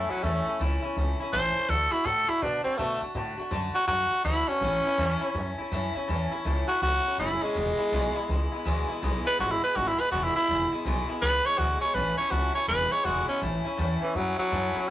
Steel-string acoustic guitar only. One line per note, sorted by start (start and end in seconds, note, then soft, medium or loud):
0.00 0.10 C#4 medium
0.09 0.23 A3 soft
0.09 0.23 C#4 soft
0.09 0.23 E4 medium
0.23 0.46 A2 medium
0.23 0.47 E3 medium
0.23 0.47 A3 medium
0.23 0.46 C#4 medium
0.23 0.44 E4 medium
0.46 0.59 A3 soft
0.46 0.60 C#4 medium
0.46 0.59 E4 medium
0.59 0.83 A2 medium
0.59 0.83 E3 medium
0.59 0.83 A3 medium
0.59 0.83 C#4 medium
0.59 0.81 E4 medium
0.82 0.96 A3 medium
0.82 0.97 C#4 medium
0.82 0.96 E4 medium
0.96 1.19 E3 medium
0.96 1.20 A3 medium
0.96 1.20 C#4 medium
0.96 1.19 E4 medium
1.20 1.33 A3 soft
1.20 1.33 C#4 medium
1.20 1.33 E4 medium
1.33 1.56 A2 medium
1.33 1.56 E3 medium
1.33 1.57 A3 medium
1.33 1.56 C#4 medium
1.33 1.54 E4 medium
1.55 1.69 A3 soft
1.55 1.70 C#4 medium
1.55 1.69 E4 medium
1.69 1.93 D3 medium
1.69 1.93 A3 medium
1.69 1.93 D4 medium
1.69 1.91 F#4 medium
1.92 2.05 A3 soft
1.92 2.06 D4 medium
1.92 2.06 F#4 medium
2.05 2.29 D3 medium
2.05 2.29 A3 medium
2.05 2.29 D4 medium
2.05 2.27 F#4 medium
2.29 2.42 A3 soft
2.29 2.43 D4 soft
2.29 2.42 F#4 medium
2.42 2.65 D3 medium
2.42 2.66 A3 medium
2.42 2.65 D4 medium
2.42 2.63 F#4 medium
2.64 2.77 A3 soft
2.64 2.78 D4 soft
2.64 2.78 F#4 medium
2.78 3.02 D3 medium
2.78 3.02 A3 medium
2.78 3.01 D4 medium
2.78 3.00 F#4 medium
3.01 3.14 A3 soft
3.01 3.15 D4 medium
3.01 3.15 F#4 medium
3.15 3.39 D3 medium
3.15 3.39 A3 medium
3.15 3.38 D4 medium
3.15 3.36 F#4 loud
3.37 3.51 A3 medium
3.37 3.51 D4 medium
3.37 3.52 F#4 medium
3.51 3.75 D3 medium
3.51 3.75 A3 medium
3.51 3.75 D4 loud
3.51 3.73 F#4 loud
3.74 3.88 A3 soft
3.74 3.89 D4 medium
3.74 3.88 F#4 medium
3.87 4.12 D3 medium
3.87 4.12 A3 medium
3.87 4.11 D4 medium
3.87 4.09 F#4 medium
4.10 4.24 A3 soft
4.10 4.25 D4 soft
4.10 4.25 F#4 medium
4.24 4.48 D3 medium
4.24 4.49 A3 medium
4.24 4.49 D4 medium
4.24 4.46 F#4 medium
4.48 4.61 A3 medium
4.48 4.63 D4 medium
4.48 4.62 F#4 medium
4.61 4.85 A2 medium
4.61 4.85 E3 medium
4.61 4.86 A3 medium
4.61 4.85 C#4 medium
4.61 4.83 E4 medium
4.84 4.98 A3 soft
4.84 4.99 C#4 medium
4.84 4.98 E4 medium
4.98 5.22 A2 medium
4.98 5.22 E3 medium
4.98 5.23 A3 medium
4.98 5.22 C#4 loud
4.98 5.20 E4 loud
5.21 5.34 A3 medium
5.21 5.35 C#4 medium
5.21 5.35 E4 medium
5.34 5.58 E3 medium
5.34 5.59 A3 medium
5.34 5.59 C#4 medium
5.34 5.57 E4 medium
5.58 5.72 A3 medium
5.58 5.72 C#4 medium
5.58 5.72 E4 medium
5.72 5.95 A2 medium
5.72 5.95 E3 medium
5.72 5.96 A3 loud
5.72 5.95 C#4 medium
5.72 5.94 E4 loud
5.95 6.08 A3 medium
5.95 6.08 C#4 medium
5.95 6.08 E4 medium
6.08 6.32 A2 medium
6.08 6.32 E3 medium
6.08 6.32 A3 medium
6.08 6.32 C#4 medium
6.08 6.30 E4 medium
6.31 6.45 A3 medium
6.31 6.45 C#4 medium
6.31 6.45 E4 medium
6.45 6.68 A2 loud
6.45 6.69 E3 medium
6.45 6.69 A3 loud
6.45 6.68 C#4 medium
6.45 6.66 E4 loud
6.68 6.81 A3 soft
6.68 6.82 C#4 soft
6.68 6.81 E4 medium
6.81 7.05 E3 medium
6.81 7.05 A3 medium
6.81 7.06 C#4 medium
6.81 7.04 E4 medium
7.05 7.18 A3 soft
7.05 7.19 C#4 medium
7.05 7.18 E4 medium
7.18 7.42 A2 medium
7.18 7.42 E3 medium
7.18 7.43 A3 medium
7.18 7.42 C#4 medium
7.18 7.40 E4 medium
7.41 7.56 A3 soft
7.41 7.56 C#4 medium
7.41 7.55 E4 medium
7.55 7.78 E2 medium
7.55 7.79 B2 medium
7.55 7.79 E3 medium
7.55 7.79 G#3 medium
7.55 7.78 B3 medium
7.55 7.77 E4 medium
7.78 7.91 E3 soft
7.78 7.92 G#3 medium
7.78 7.92 B3 medium
7.78 7.92 E4 medium
7.92 8.15 E2 medium
7.92 8.15 B2 medium
7.92 8.16 E3 medium
7.92 8.16 G#3 medium
7.92 8.15 B3 loud
7.92 8.14 E4 loud
8.15 8.27 E3 medium
8.15 8.29 G#3 medium
8.15 8.29 B3 medium
8.15 8.28 E4 medium
8.28 8.52 E3 medium
8.28 8.53 G#3 medium
8.28 8.52 B3 medium
8.28 8.51 E4 medium
8.52 8.65 E3 medium
8.52 8.66 G#3 medium
8.52 8.66 B3 medium
8.52 8.65 E4 medium
8.65 8.89 E2 loud
8.65 8.89 B2 loud
8.65 8.89 E3 loud
8.65 8.89 G#3 loud
8.65 8.88 B3 loud
8.65 8.87 E4 medium
8.88 9.02 E3 medium
8.88 9.02 G#3 medium
8.88 9.02 B3 medium
8.88 9.02 E4 medium
9.02 9.25 E2 medium
9.02 9.26 B2 medium
9.02 9.26 E3 medium
9.02 9.26 G#3 medium
9.02 9.25 B3 medium
9.02 9.24 E4 medium
9.25 9.38 E3 soft
9.25 9.39 G#3 medium
9.25 9.39 B3 medium
9.25 9.38 E4 medium
9.38 9.62 E2 medium
9.38 9.62 B2 medium
9.38 9.63 E3 medium
9.38 9.63 G#3 medium
9.38 9.62 B3 medium
9.38 9.60 E4 medium
9.61 9.73 E3 soft
9.61 9.74 G#3 medium
9.61 9.75 B3 medium
9.61 9.75 E4 medium
9.74 9.98 E3 medium
9.74 9.99 G#3 medium
9.74 9.98 B3 medium
9.74 9.97 E4 medium
9.98 10.11 E3 soft
9.98 10.12 G#3 soft
9.98 10.12 B3 soft
9.98 10.12 E4 medium
10.11 10.35 E2 medium
10.11 10.35 B2 medium
10.11 10.36 E3 medium
10.11 10.36 G#3 medium
10.11 10.35 B3 medium
10.11 10.33 E4 medium
10.34 10.48 E3 soft
10.34 10.49 G#3 soft
10.34 10.49 B3 medium
10.34 10.48 E4 medium
10.49 10.72 E2 medium
10.49 10.73 B2 medium
10.49 10.73 E3 medium
10.49 10.73 G#3 medium
10.49 10.72 B3 medium
10.49 10.70 E4 medium
10.71 10.85 E3 soft
10.71 10.85 G#3 medium
10.71 10.86 B3 medium
10.71 10.85 E4 medium
10.85 11.09 E2 medium
10.85 11.09 B2 medium
10.85 11.09 E3 medium
10.85 11.09 G#3 loud
10.85 11.09 B3 loud
10.85 11.07 E4 loud
11.09 11.20 E3 medium
11.09 11.21 G#3 medium
11.09 11.23 B3 medium
11.09 11.22 E4 medium
11.21 11.45 E3 medium
11.21 11.46 G#3 medium
11.21 11.45 B3 medium
11.21 11.44 E4 medium
11.45 11.59 E3 soft
11.45 11.59 G#3 medium
11.45 11.59 B3 medium
11.45 11.59 E4 medium
11.59 11.82 E2 medium
11.59 11.82 B2 medium
11.59 11.83 E3 medium
11.59 11.83 G#3 medium
11.59 11.82 B3 medium
11.59 11.81 E4 medium
11.82 11.94 E3 soft
11.82 11.96 G#3 medium
11.82 11.96 B3 medium
11.82 11.95 E4 medium
11.95 12.19 A2 medium
11.95 12.19 E3 medium
11.95 12.19 A3 medium
11.95 12.18 C#4 medium
11.95 12.17 E4 medium
12.18 12.31 A3 medium
12.18 12.31 C#4 medium
12.18 12.32 E4 medium
12.31 12.55 A2 medium
12.31 12.55 E3 medium
12.31 12.55 A3 medium
12.31 12.55 C#4 medium
12.31 12.53 E4 medium
12.54 12.68 A3 soft
12.54 12.69 C#4 medium
12.54 12.68 E4 medium
12.67 12.91 E3 medium
12.67 12.92 G#3 medium
12.67 12.91 B3 medium
12.67 12.90 E4 medium
12.91 13.05 E3 soft
12.91 13.05 G#3 soft
12.91 13.05 B3 medium
12.91 13.05 E4 medium
13.05 13.29 E2 medium
13.05 13.29 B2 medium
13.05 13.29 E3 medium
13.05 13.29 G#3 medium
13.05 13.28 B3 medium
13.05 13.27 E4 loud
13.28 13.40 E3 soft
13.28 13.42 G#3 medium
13.28 13.42 B3 medium
13.28 13.42 E4 medium
13.41 13.65 A2 medium
13.41 13.65 E3 medium
13.41 13.65 A3 medium
13.41 13.65 C#4 medium
13.41 13.63 E4 medium
13.64 13.78 A3 soft
13.64 13.78 C#4 medium
13.64 13.78 E4 medium
13.77 14.01 A2 medium
13.77 14.02 E3 medium
13.77 14.02 A3 medium
13.77 14.02 C#4 medium
13.77 14.00 E4 loud
14.01 14.14 A3 soft
14.01 14.15 C#4 medium
14.01 14.15 E4 soft
14.13 14.38 E3 medium
14.13 14.38 A3 medium
14.13 14.37 C#4 medium
14.13 14.35 E4 medium
14.37 14.51 A3 soft
14.37 14.51 C#4 soft
14.37 14.51 E4 medium
14.51 14.75 A2 medium
14.51 14.75 E3 medium
14.51 14.75 A3 medium
14.51 14.74 C#4 medium
14.51 14.72 E4 loud
14.73 14.87 A3 soft
14.73 14.88 C#4 medium
14.73 14.88 E4 medium
14.87 14.90 A2 medium